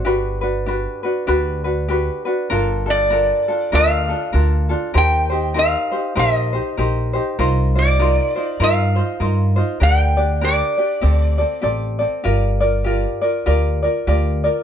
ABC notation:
X:1
M:4/4
L:1/8
Q:"Swing" 1/4=99
K:G
V:1 name="Resonator guitar played with a steel bar"
z8 | [K:Gm] z d3 f3 z | g2 f2 e3 z | z d3 f4 |
g2 d4 z2 | z8 |]
V:2 name="Ukulele"
[DFGB] [DFB] [DFGB] [DFB] [DFGB] [DFB] [DFGB] [DFB] | [K:Gm] [DFAB] [DFA] [DFAB] [DFA] [DFAB] [DFA] [DFAB] [DFA] | [EGBc] [EGc] [EGBc] [EGc] [EGBc] [EGc] [EGBc] [EGc] | [EFBc] [EFc] [EFBc] [EFc] [EFBc] [EFc] [EFBc] [EFc] |
[DGBd] [DGd] [DGBd] [DGd] [CGAd] [CAd] [CGAd] [CAd] | [FGBd] [FBd] [FGBd] [FBd] [FGBd] [FBd] [FGBd] [FBd] |]
V:3 name="Upright bass" clef=bass
G,,,4 D,,4 | [K:Gm] G,,,4 D,,2 D,,2 | E,,4 B,,,2 B,,,2 | C,,4 G,,2 G,,2 |
D,,4 D,,2 A,,,2 | G,,,4 D,,2 D,,2 |]